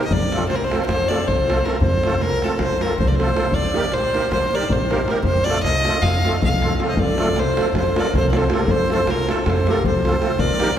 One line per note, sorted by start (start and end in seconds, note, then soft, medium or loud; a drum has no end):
0.04 0.14 D#5 medium
0.10 0.23 F2 loud
0.10 0.48 D5 medium
0.10 davul low medium
0.32 0.43 A3 medium
0.32 0.43 C4 medium
0.32 0.43 F4 medium
0.32 0.44 A4 medium
0.32 davul high medium
0.42 davul high soft
0.49 0.73 C2 medium
0.49 0.57 C5 medium
0.49 davul high medium
0.55 0.66 A#4 medium
0.64 0.85 C5 medium
0.70 0.82 A3 medium
0.70 0.82 C4 soft
0.70 0.82 F4 soft
0.70 0.82 A4 medium
0.70 davul high medium
0.80 davul high soft
0.86 1.12 F2 medium
0.86 1.10 C5 loud
0.86 davul high medium
0.86 davul low medium
1.01 davul high soft
1.08 1.21 A3 medium
1.08 1.21 C4 medium
1.08 1.21 F4 soft
1.08 1.22 A4 medium
1.08 1.29 D5 medium
1.08 davul high medium
1.27 1.60 C2 medium
1.27 1.66 C5 medium
1.27 davul low medium
1.40 davul high soft
1.46 1.58 A3 medium
1.46 1.58 C4 medium
1.46 1.58 F4 soft
1.46 1.59 A4 medium
1.46 davul high medium
1.64 1.75 A3 medium
1.64 1.76 C4 medium
1.64 1.76 F4 medium
1.64 1.76 A4 medium
1.64 1.81 A#4 medium
1.64 davul high medium
1.75 davul high soft
1.81 1.94 F2 loud
1.81 2.23 C5 medium
1.81 davul low medium
2.03 2.15 A3 medium
2.03 2.15 C4 medium
2.03 2.15 F4 medium
2.03 2.16 A4 medium
2.03 davul high medium
2.12 davul high soft
2.19 2.43 C2 medium
2.19 2.45 A#4 loud
2.19 davul high medium
2.42 2.53 A3 medium
2.42 2.54 C4 soft
2.42 2.54 F4 medium
2.42 2.61 A4 medium
2.42 2.54 A4 medium
2.42 davul high medium
2.51 davul high soft
2.59 2.83 F2 medium
2.59 2.83 C5 loud
2.59 davul high medium
2.59 davul low medium
2.70 davul high soft
2.81 2.93 A3 soft
2.81 2.93 C4 medium
2.81 2.93 F4 medium
2.81 2.94 A4 medium
2.81 2.99 A#4 medium
2.81 davul high medium
2.98 3.31 C2 medium
2.98 3.09 C5 medium
2.98 davul low medium
3.08 3.17 D5 medium
3.08 davul high soft
3.15 3.29 A3 medium
3.15 3.29 C4 medium
3.15 3.30 F4 medium
3.15 3.56 C5 medium
3.19 3.30 A4 medium
3.19 davul high medium
3.34 3.46 A3 medium
3.34 3.46 C4 medium
3.34 3.47 F4 soft
3.34 3.47 A4 medium
3.34 davul high medium
3.44 davul high soft
3.52 3.66 D#2 medium
3.52 3.95 D5 loud
3.52 davul low medium
3.73 3.85 A#3 medium
3.73 3.85 D#4 medium
3.73 3.86 G4 medium
3.73 3.86 A#4 medium
3.73 davul high medium
3.82 davul high soft
3.92 4.16 A#1 medium
3.92 4.32 C5 loud
3.92 davul high medium
4.13 4.25 A#3 medium
4.13 4.25 D#4 medium
4.13 4.25 G4 medium
4.13 4.26 A#4 medium
4.13 davul high medium
4.24 davul high soft
4.31 4.55 D#2 medium
4.31 4.56 C5 loud
4.31 davul high medium
4.31 davul low medium
4.43 davul high soft
4.53 4.64 A#3 medium
4.53 4.65 D#4 medium
4.53 4.65 G4 medium
4.53 4.65 A#4 medium
4.53 4.73 D5 medium
4.69 5.02 A#1 loud
4.69 5.11 C5 medium
4.69 davul low medium
4.81 davul high soft
4.89 5.01 A#3 medium
4.89 5.01 D#4 medium
4.89 5.01 G4 medium
4.89 5.02 A#4 medium
4.89 davul high medium
5.07 5.18 A#3 medium
5.07 5.18 D#4 soft
5.07 5.19 G4 medium
5.07 5.19 A#4 medium
5.07 5.23 A#4 medium
5.07 davul high medium
5.15 davul high soft
5.23 5.37 F2 medium
5.23 5.46 C5 medium
5.23 davul low medium
5.35 davul high soft
5.44 5.58 A3 medium
5.44 5.58 C4 medium
5.44 5.58 F4 medium
5.44 5.62 D5 loud
5.44 davul high medium
5.49 5.59 A4 medium
5.55 davul high soft
5.63 5.87 C2 medium
5.63 6.03 D#5 loud
5.63 davul high medium
5.75 davul high soft
5.85 5.96 A3 soft
5.85 5.97 C4 medium
5.85 5.97 F4 medium
5.85 5.97 A4 medium
5.85 davul high medium
6.02 6.26 F2 medium
6.02 6.42 F5 loud
6.02 davul high medium
6.02 davul low medium
6.15 davul high soft
6.25 6.36 A3 medium
6.25 6.36 C4 soft
6.25 6.36 F4 medium
6.25 6.37 A4 medium
6.25 davul high medium
6.34 davul high soft
6.41 6.73 C2 medium
6.41 6.81 F5 medium
6.41 davul low medium
6.53 davul high soft
6.61 6.72 A3 medium
6.61 6.73 C4 medium
6.61 6.73 F4 soft
6.61 6.73 A4 medium
6.61 davul high medium
6.71 davul high soft
6.78 6.89 A3 medium
6.78 6.89 C4 medium
6.78 6.90 F4 medium
6.78 6.90 A4 medium
6.78 davul high medium
6.88 6.99 C5 medium
6.88 7.01 D#5 medium
6.88 davul high soft
6.94 7.07 F2 medium
6.94 7.37 A4 medium
6.94 davul low medium
6.99 7.40 D5 medium
7.17 7.28 A3 medium
7.17 7.29 C4 medium
7.17 7.29 F4 medium
7.17 7.29 A4 medium
7.17 davul high medium
7.28 davul high soft
7.34 7.58 C2 medium
7.34 7.75 A4 medium
7.34 davul high medium
7.39 7.76 C5 loud
7.56 7.67 A3 medium
7.56 7.68 C4 soft
7.56 7.68 F4 medium
7.56 7.68 A4 medium
7.56 davul high medium
7.67 davul high soft
7.73 7.97 F2 medium
7.73 7.99 A4 medium
7.73 davul high medium
7.73 davul low medium
7.78 8.01 C5 medium
7.95 8.06 A3 medium
7.95 8.07 C4 medium
7.95 8.07 F4 medium
7.95 8.07 A4 medium
7.95 8.14 A#4 medium
7.95 davul high medium
7.99 8.15 D5 medium
8.13 8.45 C2 loud
8.13 8.28 A4 medium
8.13 8.29 C5 medium
8.13 davul low medium
8.25 8.36 A#4 soft
8.25 davul high soft
8.31 8.44 A3 medium
8.31 8.44 C4 medium
8.31 8.44 F4 medium
8.31 8.45 A4 medium
8.31 8.38 D5 medium
8.31 davul high medium
8.35 8.45 A4 medium
8.35 8.49 C5 medium
8.45 8.54 A4 soft
8.45 8.55 C5 medium
8.50 8.61 A3 medium
8.50 8.61 C4 medium
8.50 8.61 F4 medium
8.50 8.69 G4 medium
8.50 8.62 A4 medium
8.50 8.72 A#4 medium
8.50 davul high medium
8.60 davul high soft
8.66 8.79 F2 medium
8.66 8.89 A4 medium
8.66 davul low medium
8.71 8.90 C5 loud
8.89 9.00 A3 medium
8.89 9.00 C4 medium
8.89 9.00 F4 medium
8.89 9.10 A4 medium
8.89 9.01 A4 medium
8.89 davul high medium
8.95 9.12 C5 medium
8.99 davul high soft
9.06 9.29 C2 medium
9.06 9.30 F4 medium
9.06 davul high medium
9.10 9.32 A#4 loud
9.27 9.38 A3 medium
9.27 9.39 C4 soft
9.27 9.39 F4 medium
9.27 9.49 F4 medium
9.27 9.39 A4 medium
9.27 9.51 A4 medium
9.27 davul high medium
9.37 davul high soft
9.46 9.69 F2 medium
9.46 9.70 A4 medium
9.46 9.72 C5 medium
9.46 davul high medium
9.46 davul low medium
9.58 davul high soft
9.67 9.78 A3 medium
9.67 9.79 C4 medium
9.67 9.79 F4 soft
9.67 9.85 G4 medium
9.67 9.79 A4 medium
9.67 9.86 A#4 medium
9.67 davul high medium
9.84 10.17 C2 medium
9.84 10.40 A4 medium
9.84 10.41 C5 medium
9.84 davul low medium
9.95 davul high soft
10.05 10.15 A3 medium
10.05 10.15 C4 medium
10.05 10.15 F4 medium
10.05 10.16 A4 medium
10.05 davul high medium
10.21 10.32 A3 medium
10.21 10.32 C4 medium
10.21 10.32 F4 medium
10.21 10.32 A4 medium
10.21 davul high medium
10.31 davul high soft
10.39 10.51 D#2 loud
10.39 10.78 A#4 medium
10.39 10.77 D5 medium
10.39 davul low medium
10.58 10.70 A#3 medium
10.58 10.70 D#4 medium
10.58 10.70 G4 medium
10.58 10.71 A#4 medium
10.58 davul high medium
10.68 davul high soft